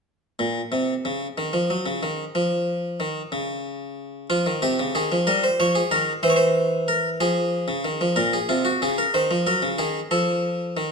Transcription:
0.39 A#2
0.72 C3
1.05 C#3
1.38 D#3
1.53 F3
1.70 F#3
1.86 C#3
2.03 D#3
2.35 F3
3.00 D#3
3.32 C#3
4.30 F3 F4
4.46 D#3
4.62 C3 G4
4.79 C#3
4.95 D#3 G#4
5.12 F3
5.27 G3 A#4
5.44 C5
5.60 F3 C#5
5.75 G#4
5.91 D#3 A#4
6.23 E3 C5
6.30 C#5
6.36 C5
6.88 A#4
7.20 F3 G#4
7.68 C#3
7.84 D#3
8.01 F3
8.16 A#2 A#4
8.33 G#4
8.49 C3 F4
8.65 F#4
8.82 C#3 G#4
8.98 A#4
9.14 D#3 C5
9.31 F3
9.47 F#3 A#4
9.62 C#3
9.78 D#3 G#4
10.11 F3 A4
10.77 D#3

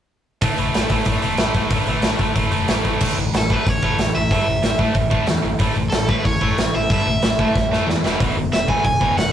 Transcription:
0.41 A1 A2 E3 A3, kick, open hi-hat
0.58 A1 A2 E3 A3, open hi-hat
0.74 A1 A2 E3 A3, snare, open hi-hat
0.89 A1 A2 E3 A3, kick, open hi-hat
1.05 A1 A2 E3 A3, kick, open hi-hat
1.22 E1 A2 E3 A3, open hi-hat
1.38 A1 A2 E3 A3, snare, open hi-hat
1.54 A1 A2 E3 A3, kick, open hi-hat
1.70 A1 A2 E3 A3, kick, open hi-hat
1.87 A1 A2 E3 A3, open hi-hat
2.02 A1 A2 E3 A3, snare, open hi-hat
2.19 A1 A2 E3 A3, kick, open hi-hat
2.36 A1 A2 E3 A3, kick, open hi-hat
2.52 E1 A2 E3 A3, open hi-hat
2.68 A1 A2 E3 A3, snare, open hi-hat
2.85 A1 A2 E3 A3, kick, open hi-hat
3.00 A1 A2 E3 A3, kick, crash
3.17 A1 A2 E3
3.34 A1 A2 E3, snare, open hi-hat
3.38 A4
3.50 A2 E3 A3 B4, kick
3.66 A1 A2 E3 C#5, kick, open hi-hat
3.83 A1 A2 E3 A3, kick
3.98 A1 A2 E3, snare, open hi-hat
4.15 A1 A2 E3 E5
4.31 G2 A2 E3 A3 E5, kick, open hi-hat
4.47 A1 A2 E3
4.63 A1 A2 E3, snare, open hi-hat
4.78 A2 E3 A3, kick
4.94 A1 A2 E3, kick, open hi-hat
5.10 A2 E3 A3, kick
5.26 E2 A2 E3, snare, open hi-hat
5.43 A1 A2 E3
5.59 A1 A2 E3 A3, kick, open hi-hat
5.75 A1 A2 E3
5.90 A1 A2 A4, snare, open hi-hat
5.94 E3
6.08 A2 E3 A3 B4, kick
6.25 A1 A2 E3 C#5, kick, open hi-hat
6.41 A1 A2 E3 A3, kick
6.58 A1 A2 E3, snare, open hi-hat
6.74 A1 A2 E3 E5
6.90 G2 A2 E3 A3 E5, kick, open hi-hat
7.07 A1 A2 E3
7.22 A1 A2 E3, snare, open hi-hat
7.39 A2 E3 A3, kick
7.55 A1 A2 E3, kick, snare
7.72 A2 E3 A3, snare
7.87 E2 A2 E3, snare
8.04 E1 E2 B2 E3, snare
8.20 E1 E2 B2 E3, kick, open hi-hat
8.36 E1 E2 B2
8.53 E1 E2 B2 E5, snare, open hi-hat
8.68 E2 B2 E3 G#5, kick
8.85 E1 E2 B2 G#5, kick, open hi-hat
9.01 E1 E2 B2 E3, kick
9.16 E1 E2 B2 F#5, snare, open hi-hat

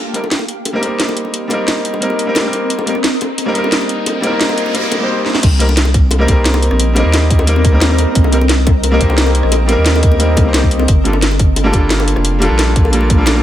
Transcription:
Already playing: C4 A#4 D#5, riser
0.13 G3 A#3 C4 D#4 A#4, closed hi-hat
0.24 high bongo
0.31 snare, closed hi-hat
0.39 high bongo
0.48 closed hi-hat
0.65 closed hi-hat, high bongo
0.73 G3 A#3 C4 D#4 A#4
0.80 G3 A#3 C4, closed hi-hat, high bongo
0.84 D#4 A#4
1.00 snare, closed hi-hat
1.09 high bongo
1.17 closed hi-hat
1.25 high bongo
1.34 closed hi-hat
1.48 G3 A#3 C4, closed hi-hat, high bongo
1.52 D#4 A#4
1.68 snare, closed hi-hat, high bongo
1.85 closed hi-hat
1.94 high bongo
2.00 G3 A#3 C4 D#4 A#4, closed hi-hat
2.10 high bongo
2.19 closed hi-hat
2.26 G3 A#3 C4 D#4 A#4
2.35 snare, closed hi-hat, high bongo
2.42 G3 A#3 C4
2.46 D#4 A#4
2.53 closed hi-hat, high bongo
2.70 closed hi-hat
2.79 high bongo
2.85 G3 A#3 C4 D#4 A#4, closed hi-hat
2.95 cross-stick, high bongo
3.04 snare, closed hi-hat
3.21 closed hi-hat, high bongo
3.38 closed hi-hat, high bongo
3.45 G3 A#3 C4 D#4 A#4, cross-stick
3.52 G3 A#3 C4, closed hi-hat
3.57 D#4 A#4
3.64 high bongo
3.72 snare, closed hi-hat
3.81 high bongo
3.89 closed hi-hat
4.06 closed hi-hat, high bongo, noise sweep
4.21 G3 A#3 C4, closed hi-hat, high bongo
4.25 D#4 A#4
4.32 cross-stick
4.41 snare, closed hi-hat
4.49 high bongo
4.58 closed hi-hat
4.66 high bongo
4.73 G3 A#3 C4 D#4 A#4, closed hi-hat
4.83 cross-stick
4.92 closed hi-hat, high bongo
4.97 G3 A#3 C4
5.02 D#4 C5
5.26 snare
5.35 snare
5.43 C2 C4 A#4 D#5, kick, closed hi-hat, crash, high bongo
5.58 G3 A#3 C4 D#4 A#4, closed hi-hat
5.69 high bongo
5.77 snare, closed hi-hat
5.85 high bongo
5.94 kick, cross-stick, closed hi-hat
6.11 closed hi-hat, high bongo
6.18 G3 A#3 C4 D#4 A#4
6.25 C2 G3 A#3 C4, kick, closed hi-hat, high bongo
6.30 D#4 A#4
6.46 snare, closed hi-hat
6.54 cross-stick, high bongo
6.63 closed hi-hat
6.71 A#1, cross-stick, high bongo
6.80 closed hi-hat
6.93 G3 A#3 C4, closed hi-hat, high bongo
6.98 D#4 A#4
7.05 D#2
7.13 snare, closed hi-hat, high bongo
7.30 kick, closed hi-hat
7.39 high bongo
7.46 G3 A#3 C4 D#4 A#4, closed hi-hat
7.56 high bongo
7.65 kick, closed hi-hat
7.72 G3 A#3 C4 D#4 A#4
7.81 snare, closed hi-hat, high bongo
7.87 G3 A#3 C4, cross-stick
7.92 D#4 A#4
7.98 closed hi-hat, high bongo
8.15 C2, kick, closed hi-hat
8.24 high bongo
8.31 G3 A#3 C4 D#4 A#4, closed hi-hat
8.41 high bongo
8.49 snare, closed hi-hat
8.67 kick, cross-stick, closed hi-hat, high bongo
8.84 closed hi-hat, high bongo
8.91 G3 A#3 C4 D#4 A#4
8.98 C2 G3 A#3 C4, kick, closed hi-hat
9.02 D#4 A#4
9.10 high bongo
9.18 snare, closed hi-hat
9.26 cross-stick, high bongo
9.35 closed hi-hat
9.43 A#1, cross-stick
9.52 closed hi-hat, high bongo
9.66 G3 A#3 C4, closed hi-hat, high bongo
9.71 D#4 A#4
9.78 D#2
9.86 snare, closed hi-hat
9.96 high bongo
10.03 kick, closed hi-hat
10.12 high bongo
10.18 G3 A#3 C4 D#4 A#4, closed hi-hat
10.37 C2, kick, closed hi-hat, high bongo
10.43 G3 A#3 C4
10.47 D#4 C5
10.54 snare, closed hi-hat, high bongo
10.63 kick, cross-stick
10.71 closed hi-hat
10.79 high bongo
10.88 G1 A#3 F5 A5, kick, closed hi-hat, high bongo
11.04 G3 A#3 D4 F4 A4, closed hi-hat
11.13 high bongo
11.22 snare, closed hi-hat
11.32 high bongo
11.39 kick, cross-stick, closed hi-hat
11.56 closed hi-hat, high bongo
11.63 G3 A#3 D4 F4 A4
11.70 G1 G3 A#3 D4, kick, closed hi-hat, high bongo
11.75 F4 A4
11.90 snare, closed hi-hat
11.99 cross-stick, high bongo
12.08 closed hi-hat
12.16 F1, cross-stick, high bongo
12.25 closed hi-hat
12.39 G3 A#3 D4, closed hi-hat, high bongo
12.43 F4 A4
12.50 A#1
12.59 snare, closed hi-hat, high bongo
12.76 kick, closed hi-hat
12.85 high bongo
12.91 G3 A#3 D4 F4 A4, closed hi-hat
13.01 high bongo
13.10 kick, closed hi-hat
13.17 G3 A#3 D4 F4 A4
13.26 snare, closed hi-hat, high bongo
13.33 G3 A#3 D4, cross-stick
13.37 F4 A4

